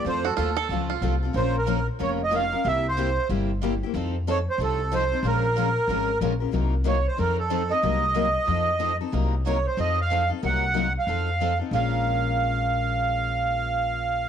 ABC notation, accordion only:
X:1
M:4/4
L:1/8
Q:"Swing" 1/4=185
K:Bbm
V:1 name="Accordion"
c =A3 z4 | c B2 z d e f2 | =e c3 z4 | z2 d c =A2 c2 |
B6 z2 | z2 d c B =A2 e- | e6- e z | z2 d c e f2 z |
g3 f4 z | f8- | f8 |]